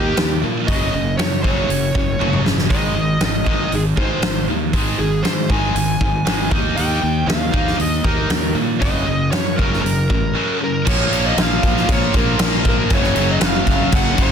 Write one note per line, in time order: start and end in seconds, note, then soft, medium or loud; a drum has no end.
0.00 0.16 D#2 medium
0.00 0.16 D#3 medium
0.00 0.16 A#3 medium
0.00 0.16 D#4 medium
0.00 0.39 G4 medium
0.17 0.41 D#2 medium
0.17 0.40 D#3 medium
0.17 0.41 A#3 medium
0.17 snare loud
0.17 open hi-hat medium
0.43 0.67 A#2 medium
0.43 0.66 D#3 medium
0.43 0.66 A#3 medium
0.67 0.92 F#1 medium
0.67 0.92 F#2 medium
0.67 0.93 C#3 medium
0.67 0.93 F#3 medium
0.67 1.17 D#5 medium
0.67 kick medium
0.67 open hi-hat medium
0.93 1.17 F#1 medium
0.93 1.16 F#2 medium
0.93 1.16 C#3 medium
1.17 1.43 F#2 medium
1.17 1.41 F#2 medium
1.17 1.42 C#3 medium
1.17 1.41 C#5 medium
1.17 snare loud
1.17 open hi-hat medium
1.43 1.68 F#1 medium
1.43 1.68 F#2 medium
1.43 1.68 C#3 medium
1.43 1.68 F#3 medium
1.43 2.40 C#5 medium
1.43 kick medium
1.69 1.93 F#1 medium
1.69 1.92 F#2 medium
1.69 1.92 C#3 medium
1.69 open hi-hat medium
1.95 2.19 F#1 medium
1.95 2.18 F#2 medium
1.95 2.18 C#3 medium
1.95 kick medium
2.20 2.44 F#1 medium
2.20 2.44 F#2 medium
2.20 2.45 C#3 medium
2.20 2.45 F#3 medium
2.20 high tom medium
2.33 mid tom medium
2.45 2.69 F#1 medium
2.45 2.69 F#2 medium
2.45 2.69 C#3 medium
2.45 snare medium
2.58 snare medium
2.70 2.94 G#1 medium
2.70 2.95 G#2 medium
2.70 2.95 D#3 medium
2.70 2.96 G#3 medium
2.70 3.23 D#5 loud
2.70 kick medium
2.70 open hi-hat soft
2.96 3.20 G#1 medium
2.96 3.20 G#2 medium
2.96 3.20 D#3 medium
3.20 3.45 G#1 medium
3.20 3.45 G#2 medium
3.20 3.45 D#3 medium
3.20 snare loud
3.20 open hi-hat soft
3.25 3.75 D#5 loud
3.46 3.70 G#1 medium
3.46 3.71 G#2 medium
3.46 3.71 D#3 medium
3.46 3.71 G#3 medium
3.46 kick medium
3.71 3.96 G#1 medium
3.71 3.95 G#2 medium
3.71 3.96 D#3 medium
3.71 3.81 G#4 medium
3.71 open hi-hat soft
3.97 4.21 G#1 medium
3.97 4.22 G#2 medium
3.97 4.22 D#3 medium
3.97 4.22 G#3 medium
3.97 4.45 C5 medium
3.97 kick medium
4.21 4.46 G#1 medium
4.21 4.46 G#2 medium
4.21 4.46 D#3 medium
4.21 snare loud
4.21 open hi-hat medium
4.48 4.72 D#2 medium
4.48 4.72 G#2 medium
4.48 4.72 D#3 medium
4.73 4.97 G#1 medium
4.73 4.98 G#2 medium
4.73 4.98 D#3 medium
4.73 4.99 G#3 loud
4.73 kick medium
4.73 open hi-hat soft
4.98 5.23 G#1 medium
4.98 5.22 G#2 medium
4.98 5.23 D#3 medium
4.98 5.25 G#4 medium
5.23 5.49 G#2 medium
5.23 5.48 G#2 medium
5.23 5.48 D#3 medium
5.23 5.50 C5 loud
5.23 snare loud
5.23 open hi-hat medium
5.50 5.74 G#1 medium
5.50 5.74 G#2 medium
5.50 5.74 D#3 medium
5.50 5.75 G#3 loud
5.50 6.48 G#5 medium
5.50 kick medium
5.75 5.99 G#1 medium
5.75 5.99 G#2 medium
5.75 5.99 D#3 medium
5.75 open hi-hat medium
6.00 6.25 G#1 medium
6.00 6.24 G#2 medium
6.00 6.24 D#3 medium
6.00 kick medium
6.26 6.50 G#1 medium
6.26 6.51 G#2 medium
6.26 6.50 D#3 medium
6.26 6.51 G#3 loud
6.26 snare loud
6.26 open hi-hat medium
6.51 6.76 D#2 medium
6.51 6.75 D#3 medium
6.51 6.76 A#3 medium
6.51 6.76 D#4 medium
6.51 kick medium
6.76 7.02 D#2 medium
6.76 7.01 D#3 medium
6.76 7.01 A#3 medium
6.76 7.02 D#4 medium
6.76 7.28 G5 loud
6.76 open hi-hat medium
7.02 7.26 D#2 medium
7.02 7.25 D#3 medium
7.02 7.25 A#3 medium
7.27 7.52 D#2 medium
7.27 7.51 D#3 medium
7.27 7.51 A#3 medium
7.27 7.76 F5 loud
7.27 snare loud
7.27 open hi-hat medium
7.53 7.78 D#2 medium
7.53 7.77 D#3 medium
7.53 7.78 A#3 loud
7.53 7.78 D#4 loud
7.53 kick medium
7.67 snare soft
7.78 8.03 D#2 medium
7.78 8.02 D#3 medium
7.78 8.02 A#3 medium
7.78 8.06 D#5 medium
7.78 open hi-hat medium
8.04 8.29 D#2 medium
8.04 8.29 D#3 medium
8.04 8.29 A#3 loud
8.04 8.29 D#4 loud
8.04 8.52 A#4 medium
8.04 kick medium
8.30 8.54 D#2 medium
8.30 8.53 D#3 medium
8.30 8.53 A#3 medium
8.30 snare loud
8.30 open hi-hat medium
8.54 8.79 A#2 medium
8.54 8.78 D#3 medium
8.54 8.78 A#3 medium
8.80 9.06 F#1 loud
8.80 9.05 F#2 medium
8.80 9.05 C#3 medium
8.80 9.05 F#3 medium
8.80 9.31 D#5 medium
8.80 kick medium
8.80 open hi-hat soft
9.06 9.31 F#1 medium
9.06 9.30 F#2 medium
9.06 9.30 C#3 medium
9.31 9.55 F#2 medium
9.31 9.57 F#2 medium
9.31 9.56 C#3 medium
9.31 9.58 C#5 loud
9.31 snare loud
9.31 open hi-hat medium
9.56 9.83 F#1 medium
9.56 9.82 F#2 medium
9.56 9.82 C#3 medium
9.56 9.83 F#3 loud
9.56 9.81 A#4 medium
9.56 kick medium
9.73 snare soft
9.82 10.08 F#1 medium
9.82 10.07 F#2 medium
9.82 10.07 C#3 medium
9.82 10.55 A#4 medium
9.86 open hi-hat medium
10.10 10.34 A1 medium
10.10 10.32 F#2 medium
10.10 10.33 C#3 medium
10.10 kick medium
10.35 10.59 F#2 medium
10.35 10.59 C#3 loud
10.35 10.60 F#3 medium
10.61 10.84 F#2 medium
10.61 10.84 C#3 medium
10.61 10.86 A#4 medium
10.86 11.10 A#1 medium
10.86 12.12 A#2 medium
10.86 11.12 A#2 loud
10.86 11.12 F3 loud
10.86 12.13 F3 medium
10.86 11.13 A#3 loud
10.86 12.13 A#3 medium
10.86 11.27 C#5 medium
10.86 kick loud
10.86 crash loud
10.86 crash medium
11.11 11.36 A#1 medium
11.11 11.37 A#2 medium
11.11 11.37 F3 loud
11.11 11.38 A#3 loud
11.11 crash medium
11.27 11.42 D#5 medium
11.36 11.61 A#1 medium
11.36 11.62 A#2 medium
11.36 11.63 F3 medium
11.36 11.64 A#3 medium
11.36 snare loud
11.36 crash medium
11.42 11.91 F5 loud
11.63 11.87 A#1 medium
11.63 11.89 A#2 medium
11.63 11.90 F3 medium
11.63 11.90 A#3 medium
11.63 kick medium
11.63 crash medium
11.77 snare soft
11.88 12.13 A#1 loud
11.88 12.14 A#2 loud
11.88 12.15 F3 loud
11.88 12.15 A#3 loud
11.88 12.16 C#5 loud
11.88 kick loud
11.88 crash medium
12.14 12.38 A#1 medium
12.14 12.39 A#2 medium
12.14 12.38 A#2 medium
12.14 12.39 F3 medium
12.14 12.40 F3 medium
12.14 12.38 A#3 medium
12.14 12.40 A#3 loud
12.14 12.68 A#4 medium
12.14 kick medium
12.14 crash medium
12.39 12.64 A#1 medium
12.39 12.89 A#2 medium
12.39 12.65 A#2 medium
12.39 12.90 F3 medium
12.39 12.65 F3 medium
12.39 12.65 A#3 medium
12.39 12.91 A#3 medium
12.39 snare loud
12.39 crash medium
12.65 12.90 A#1 medium
12.65 12.90 A#2 medium
12.65 12.90 F3 medium
12.65 12.90 A#3 loud
12.65 12.93 A#4 loud
12.65 kick medium
12.65 crash medium
12.90 13.15 F#1 loud
12.90 14.17 F#2 medium
12.90 13.16 F#2 loud
12.90 13.17 C#3 loud
12.90 14.18 C#3 medium
12.90 13.17 F#3 loud
12.90 14.16 F#3 loud
12.90 kick loud
12.90 crash medium
12.94 13.32 C#5 medium
13.03 snare soft
13.16 13.40 F#1 loud
13.16 13.41 F#2 medium
13.16 13.42 C#3 medium
13.16 13.42 F#3 loud
13.16 crash medium
13.31 13.36 D#5 medium
13.41 13.66 F#1 medium
13.41 13.67 F#2 medium
13.41 13.68 C#3 loud
13.41 13.68 F#3 medium
13.41 13.95 F5 loud
13.41 snare loud
13.41 crash medium
13.66 13.91 F#1 medium
13.66 13.92 F#2 medium
13.66 13.92 C#3 loud
13.66 13.93 F#3 loud
13.66 kick medium
13.66 crash medium
13.92 14.17 F#1 medium
13.92 14.17 F#2 loud
13.92 14.18 C#3 loud
13.92 14.19 F#3 loud
13.92 14.21 F#5 loud
13.92 kick loud
13.92 crash medium
14.17 14.32 F#1 medium
14.17 14.32 F#2 medium
14.17 14.32 C#3 medium
14.17 14.32 F#3 loud
14.17 kick medium
14.17 crash medium
14.22 14.32 C#5 medium